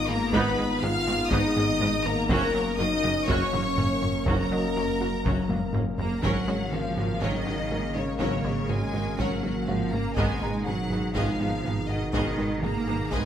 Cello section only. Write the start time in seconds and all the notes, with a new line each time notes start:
0.33 G#2
0.83 G#2
1.07 G#2
1.32 G#2
1.56 G#2
1.80 G#2
2.30 F#2
2.79 F#2
3.04 F#2
3.29 F#2
3.54 F#2
3.78 F#2
4.26 F#2
4.76 F#2
5.00 F#2
5.25 F#2
5.49 F#2
5.74 F#2
5.99 A#3
6.24 F#3
6.73 F3
7.23 D#3
7.96 C#3
8.20 C#3
8.69 G#3
9.19 F#3
9.68 F3
9.93 A#3
10.17 G#3
10.66 F#3
11.15 F3
11.88 D#3
12.13 D#3
12.62 A#3
13.12 G#3